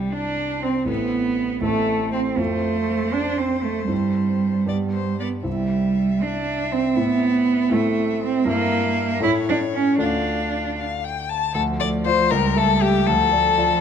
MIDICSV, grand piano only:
0, 0, Header, 1, 2, 480
1, 0, Start_track
1, 0, Tempo, 500835
1, 849, Time_signature, 6, 3, 24, 8
1, 3250, Tempo, 515464
1, 5650, Tempo, 502092
1, 9010, Tempo, 510204
1, 13077, End_track
2, 0, Start_track
2, 0, Title_t, "Grand piano"
2, 0, Program_c, 0, 0
2, 0, Control_c, 0, 64, 127
2, 0, Note_on_c, 0, 36, 37
2, 0, Note_on_c, 0, 60, 29
2, 0, Note_on_c, 0, 64, 28
2, 0, Note_on_c, 0, 67, 27
2, 798, Note_off_c, 0, 36, 0
2, 800, Note_off_c, 0, 60, 0
2, 801, Note_off_c, 0, 64, 0
2, 804, Note_off_c, 0, 67, 0
2, 818, Note_on_c, 0, 33, 37
2, 825, Note_on_c, 0, 60, 31
2, 829, Note_on_c, 0, 64, 33
2, 835, Note_on_c, 0, 69, 29
2, 866, Control_c, 0, 64, 0
2, 998, Control_c, 0, 64, 127
2, 1528, Note_off_c, 0, 33, 0
2, 1532, Note_off_c, 0, 60, 0
2, 1534, Note_off_c, 0, 64, 0
2, 1537, Note_off_c, 0, 69, 0
2, 1543, Note_on_c, 0, 33, 46
2, 1546, Note_on_c, 0, 60, 39
2, 1550, Note_on_c, 0, 64, 37
2, 1556, Note_on_c, 0, 69, 43
2, 2252, Note_off_c, 0, 33, 0
2, 2253, Note_off_c, 0, 60, 0
2, 2256, Note_off_c, 0, 64, 0
2, 2259, Note_off_c, 0, 69, 0
2, 2263, Note_on_c, 0, 41, 46
2, 2268, Note_on_c, 0, 60, 40
2, 2273, Note_on_c, 0, 65, 37
2, 2275, Note_on_c, 0, 72, 39
2, 2305, Control_c, 0, 64, 0
2, 2442, Control_c, 0, 64, 127
2, 3679, Note_off_c, 0, 41, 0
2, 3682, Note_off_c, 0, 60, 0
2, 3684, Note_off_c, 0, 65, 0
2, 3685, Note_off_c, 0, 72, 0
2, 3701, Note_on_c, 0, 43, 37
2, 3703, Note_on_c, 0, 60, 31
2, 3708, Note_on_c, 0, 64, 30
2, 3713, Note_on_c, 0, 72, 31
2, 3746, Control_c, 0, 64, 0
2, 3891, Control_c, 0, 64, 127
2, 4416, Note_off_c, 0, 43, 0
2, 4417, Note_off_c, 0, 60, 0
2, 4420, Note_off_c, 0, 64, 0
2, 4422, Note_off_c, 0, 72, 0
2, 4432, Note_on_c, 0, 43, 40
2, 4436, Note_on_c, 0, 59, 31
2, 4443, Note_on_c, 0, 67, 34
2, 4445, Note_on_c, 0, 74, 32
2, 4469, Control_c, 0, 64, 0
2, 4621, Control_c, 0, 64, 127
2, 5143, Note_off_c, 0, 43, 0
2, 5145, Note_off_c, 0, 59, 0
2, 5149, Note_off_c, 0, 67, 0
2, 5149, Note_on_c, 0, 36, 39
2, 5150, Note_off_c, 0, 74, 0
2, 5153, Note_on_c, 0, 60, 32
2, 5154, Note_on_c, 0, 64, 30
2, 5163, Note_on_c, 0, 76, 32
2, 5192, Control_c, 0, 64, 0
2, 5342, Control_c, 0, 64, 127
2, 6564, Note_off_c, 0, 36, 0
2, 6566, Note_off_c, 0, 60, 0
2, 6566, Note_off_c, 0, 64, 0
2, 6571, Note_off_c, 0, 76, 0
2, 6596, Note_on_c, 0, 45, 47
2, 6604, Note_on_c, 0, 60, 39
2, 6605, Note_on_c, 0, 64, 37
2, 6609, Note_on_c, 0, 76, 36
2, 6632, Control_c, 0, 64, 0
2, 6798, Control_c, 0, 64, 127
2, 7290, Note_off_c, 0, 45, 0
2, 7298, Note_off_c, 0, 60, 0
2, 7302, Note_off_c, 0, 64, 0
2, 7304, Note_on_c, 0, 45, 59
2, 7306, Note_off_c, 0, 76, 0
2, 7312, Note_on_c, 0, 60, 45
2, 7317, Note_on_c, 0, 64, 49
2, 7322, Note_on_c, 0, 76, 46
2, 8011, Note_off_c, 0, 45, 0
2, 8015, Note_off_c, 0, 60, 0
2, 8017, Note_off_c, 0, 64, 0
2, 8020, Note_off_c, 0, 76, 0
2, 8025, Note_on_c, 0, 43, 55
2, 8031, Note_on_c, 0, 58, 47
2, 8032, Note_on_c, 0, 64, 47
2, 8040, Note_on_c, 0, 76, 51
2, 8064, Control_c, 0, 64, 0
2, 8248, Control_c, 0, 64, 127
2, 8736, Note_off_c, 0, 43, 0
2, 8738, Note_off_c, 0, 64, 0
2, 8739, Note_off_c, 0, 58, 0
2, 8742, Note_on_c, 0, 45, 66
2, 8744, Note_off_c, 0, 76, 0
2, 8746, Note_on_c, 0, 57, 50
2, 8752, Note_on_c, 0, 64, 50
2, 8757, Note_on_c, 0, 73, 51
2, 8787, Control_c, 0, 64, 0
2, 8932, Control_c, 0, 64, 127
2, 9460, Note_off_c, 0, 45, 0
2, 9462, Note_off_c, 0, 57, 0
2, 9465, Note_off_c, 0, 64, 0
2, 9468, Note_off_c, 0, 73, 0
2, 9476, Note_on_c, 0, 38, 44
2, 9481, Note_on_c, 0, 57, 39
2, 9486, Note_on_c, 0, 65, 37
2, 9487, Note_on_c, 0, 74, 42
2, 9514, Control_c, 0, 64, 0
2, 9648, Control_c, 0, 64, 127
2, 10905, Note_off_c, 0, 38, 0
2, 10908, Note_off_c, 0, 57, 0
2, 10910, Note_off_c, 0, 65, 0
2, 10911, Note_off_c, 0, 74, 0
2, 10951, Note_on_c, 0, 38, 66
2, 10972, Control_c, 0, 64, 0
2, 11103, Control_c, 0, 64, 127
2, 11193, Note_on_c, 0, 57, 44
2, 11195, Note_on_c, 0, 74, 54
2, 11407, Note_off_c, 0, 57, 0
2, 11408, Note_off_c, 0, 74, 0
2, 11432, Note_on_c, 0, 74, 55
2, 11433, Note_on_c, 0, 65, 51
2, 11645, Note_off_c, 0, 74, 0
2, 11646, Note_off_c, 0, 38, 0
2, 11646, Note_off_c, 0, 65, 0
2, 11672, Note_on_c, 0, 37, 66
2, 11686, Control_c, 0, 64, 0
2, 11823, Control_c, 0, 64, 127
2, 11907, Note_on_c, 0, 57, 51
2, 11911, Note_on_c, 0, 76, 56
2, 12120, Note_off_c, 0, 57, 0
2, 12122, Note_off_c, 0, 76, 0
2, 12142, Note_on_c, 0, 67, 46
2, 12147, Note_on_c, 0, 76, 48
2, 12357, Note_off_c, 0, 67, 0
2, 12359, Note_off_c, 0, 76, 0
2, 12362, Note_off_c, 0, 37, 0
2, 12381, Note_on_c, 0, 38, 66
2, 12399, Control_c, 0, 64, 0
2, 12529, Control_c, 0, 64, 127
2, 12617, Note_on_c, 0, 57, 45
2, 12624, Note_on_c, 0, 74, 53
2, 12831, Note_off_c, 0, 57, 0
2, 12835, Note_off_c, 0, 74, 0
2, 12862, Note_on_c, 0, 65, 49
2, 12863, Note_on_c, 0, 74, 57
2, 13072, Note_off_c, 0, 65, 0
2, 13072, Note_off_c, 0, 74, 0
2, 13077, Note_off_c, 0, 38, 0
2, 13077, End_track
0, 0, End_of_file